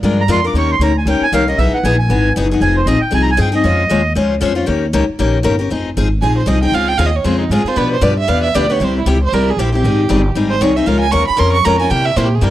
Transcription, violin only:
6.22 6.36 G#5 medium
6.38 6.49 C5 soft
6.48 6.62 D#5 medium
6.63 6.76 G5 medium
6.74 6.90 F5 medium
6.88 6.99 G5 loud
6.98 7.08 F5 medium
7.06 7.18 D#5 medium
7.16 7.26 C#5 medium
7.24 7.39 C5 medium
7.39 7.53 D#4 soft
7.51 7.69 G#4 medium
7.68 7.78 C5 loud
7.77 7.92 B4 medium
7.94 8.04 C5 medium
8.03 8.18 D5 medium
8.19 8.30 E5 loud
8.29 8.43 F5 loud
8.43 8.57 E5 medium
8.55 8.73 D5 medium
8.72 8.85 C#5 medium
8.84 8.97 C5 medium
9.00 9.11 E4 soft
9.10 9.23 G4 medium
9.23 9.35 C5 loud
9.34 9.51 A#4 medium
9.50 9.60 G#4 medium
9.59 9.73 G4 medium
9.74 10.32 G4 medium
10.50 10.63 C5 loud
10.62 10.78 C#5 medium
10.77 10.88 E5 medium
10.87 10.99 F5 medium
11.00 11.13 G#5 medium
11.11 11.27 C#6 loud
11.27 11.41 B5 medium
11.39 11.52 C6 loud
11.52 11.67 C#6 loud
11.65 11.80 A#5 loud
11.80 11.92 G#5 loud
11.90 12.07 G5 loud
12.05 12.18 E5 loud
12.17 12.27 C5 medium
12.26 12.36 G4 medium
12.34 12.46 G#4 medium
12.44 12.50 A#4 medium

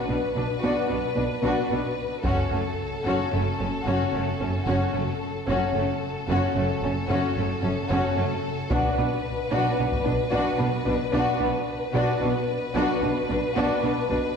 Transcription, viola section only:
0.09 0.17 D4 soft
0.37 0.45 D4 soft
0.63 0.88 D4 soft
0.90 0.98 D4 soft
1.17 1.25 D4 soft
1.44 1.69 D4 soft
1.72 1.80 D4 soft
2.25 2.50 C#4 soft
2.52 2.60 C#4 soft
3.05 3.30 C#4 soft
3.32 3.40 C#4 soft
3.60 3.68 C#4 soft
3.86 4.11 C#4 soft
4.13 4.21 C#4 soft
4.40 4.48 C#4 soft
4.66 4.92 C#4 soft
4.94 5.02 C#4 soft
5.48 5.73 C#4 soft
5.75 5.83 C#4 soft
6.29 6.54 C#4 soft
6.55 6.63 C#4 soft
6.83 6.91 C#4 soft
7.09 7.34 C#4 medium
7.38 7.46 C#4 soft
7.64 7.72 C#4 soft
7.90 8.15 C#4 soft
8.17 8.25 C#4 soft
8.70 8.96 D4 medium
8.98 9.06 D4 soft
9.51 9.77 D4 medium
9.78 9.86 D4 soft
10.05 10.13 D4 soft
10.31 10.57 D4 medium
10.58 10.66 D4 soft
10.85 10.93 D4 soft
11.12 11.38 D4 medium
11.39 11.47 D4 soft
11.94 12.19 D4 medium
12.20 12.28 D4 soft
12.74 13.00 D4 medium
13.02 13.10 D4 soft
13.29 13.37 D4 soft
13.56 13.81 D4 medium
13.83 13.91 D4 soft
14.11 14.19 D4 soft

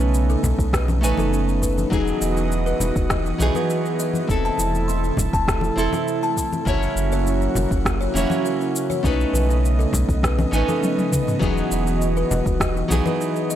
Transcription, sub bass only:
0.00 0.36 B1 medium
0.43 0.54 B1 medium
0.58 1.04 B1 loud
1.03 1.13 A1 medium
1.18 1.85 F#1 medium
1.91 2.12 E1 medium
2.21 2.73 E1 medium
2.80 2.91 E1 medium
2.95 3.33 E1 medium
3.40 3.50 B1 loud
4.29 4.50 E1 medium
4.59 5.11 E1 medium
5.18 5.29 E1 medium
5.33 5.70 E1 loud
5.77 5.88 E1 loud
6.66 6.87 F#1 medium
6.95 7.48 F#1 medium
7.55 7.66 F#1 medium
7.71 8.08 F#1 medium
8.14 8.25 E1 loud
9.04 9.25 B1 medium
9.33 9.86 B1 medium
9.93 10.04 B1 medium
10.08 10.46 B1 loud
10.52 10.63 A1 loud
11.41 11.62 E1 medium
11.71 12.24 E1 medium
12.30 12.41 E1 medium
12.46 12.83 E1 loud
12.90 13.01 B1 loud

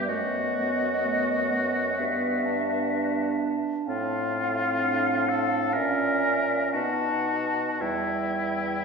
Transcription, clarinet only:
0.10 0.60 A3 medium
0.58 1.04 B3 medium
1.05 1.54 A3 medium
1.52 1.97 B3 medium
1.97 2.47 B3 medium
2.45 3.89 D4 medium
3.87 4.54 C4 medium
4.80 5.76 D4 medium
5.74 6.76 C#4 medium
6.74 7.81 B3 medium
7.82 8.85 G3 soft

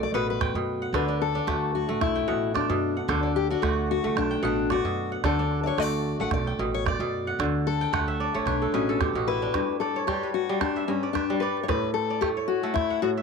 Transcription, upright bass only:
0.12 0.48 A1 medium
0.54 0.87 F#2 medium
0.93 1.38 D2 loud
1.47 1.82 D2 medium
1.89 1.99 A1 medium
2.01 2.24 B1 medium
2.29 2.64 A1 medium
2.69 3.02 F#2 medium
3.08 3.53 D2 loud
3.63 3.98 D2 medium
4.04 4.14 C#2 medium
4.16 4.38 B1 medium
4.42 4.78 A1 medium
4.84 5.17 F#2 medium
5.24 5.69 D2 loud
5.77 6.12 D2 medium
6.19 6.29 A1 medium
6.31 6.54 B1 loud
6.59 6.93 A1 medium
6.99 7.32 F#2 medium
7.39 7.84 D2 loud
7.93 8.27 D2 medium
8.35 8.45 A1 medium
8.45 8.68 B1 loud
8.72 9.07 A1 medium
9.14 9.47 A1 medium

